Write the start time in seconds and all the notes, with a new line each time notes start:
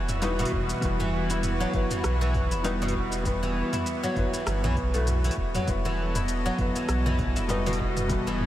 Already playing: E1 E3 G3 B3 E4 F#4 B4
0.09 E4, mid tom, open hi-hat, shaker
0.22 G3 B3 D#4 E4 F#4 B4, open hi-hat, shaker
0.39 B2, open hi-hat, shaker
0.45 open hi-hat
0.52 E1, kick, mid tom
0.69 open hi-hat, shaker
0.81 E1 E3 G3 B3 F#4, kick, open hi-hat, shaker
0.85 B4
1.00 E3, mid tom, shaker
1.30 E4, open hi-hat, shaker
1.43 mid tom, open hi-hat, shaker
1.60 F#3, shaker
1.73 G1 B3 E4 F#4 B4, kick, open hi-hat
1.91 E3, mid tom, open hi-hat, shaker
2.04 B1, cross-stick, open hi-hat, shaker
2.21 E3, shaker
2.34 kick, mid tom, open hi-hat
2.51 E1 E4, open hi-hat, shaker
2.64 G3 B3 D#4 E4 F#4 B4, open hi-hat, shaker
2.82 B2, mid tom, open hi-hat, shaker
2.88 open hi-hat
2.95 kick
3.12 open hi-hat, shaker
3.23 E3 G3 B3 F#4 B4, kick, mid tom, open hi-hat, shaker
3.43 E3, shaker
3.73 E4, mid tom, open hi-hat, shaker
3.86 open hi-hat, shaker
4.03 F#3, shaker
4.16 G1 B3 E4 F#4 B4, kick, mid tom, open hi-hat
4.33 E3, open hi-hat, shaker
4.46 G1, cross-stick, open hi-hat, shaker
4.64 B1 E3, mid tom, shaker
4.77 kick, open hi-hat
4.94 A3 B3 E4 F#4 B4, open hi-hat, shaker
5.07 mid tom, open hi-hat, shaker
5.24 E3, open hi-hat, shaker
5.31 open hi-hat
5.37 E1, kick
5.55 F#3, mid tom, open hi-hat, shaker
5.60 A4
5.67 E1 B3 E4 F#4 B4, kick, mid tom, open hi-hat, shaker
5.85 E3, high conga, shaker
6.13 E4 D#5, mid tom, open hi-hat, shaker
6.28 open hi-hat, shaker
6.46 F#3, shaker
6.58 G1 B3 E4 F#4 B4, kick, mid tom, open hi-hat, high conga
6.76 E3, open hi-hat, shaker
6.89 B1, cross-stick, open hi-hat, shaker
7.06 E3, mid tom, high conga, shaker
7.19 kick, open hi-hat, muted conga, high conga
7.36 E1 E4, open hi-hat, shaker
7.48 G3 B3 D#4 E4 F#4 B4, mid tom, open hi-hat, shaker
7.66 B2, open hi-hat, high conga, shaker
7.73 open hi-hat
7.80 kick, low conga
7.97 mid tom, open hi-hat, muted conga, shaker
8.08 E3 G3 B3 F#4 B4, kick, open hi-hat, muted conga, shaker
8.27 E3, shaker
8.40 mid tom